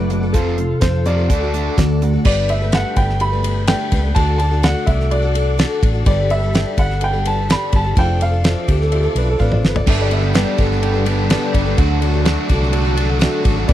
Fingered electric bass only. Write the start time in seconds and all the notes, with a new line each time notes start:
Already playing: F#1
0.34 F1
0.82 F2
1.30 D2
1.78 D2
2.25 G1
2.96 G1
3.92 C#2
4.16 D2
4.87 C2
5.83 A1
6.06 G1
6.77 G1
7.73 G1
7.97 F1
8.69 D2
9.15 B1
9.39 A1
9.64 G1
9.87 G1
10.59 G1
11.55 G1
11.78 D2
12.50 C2
13.45 G#1
13.69 G1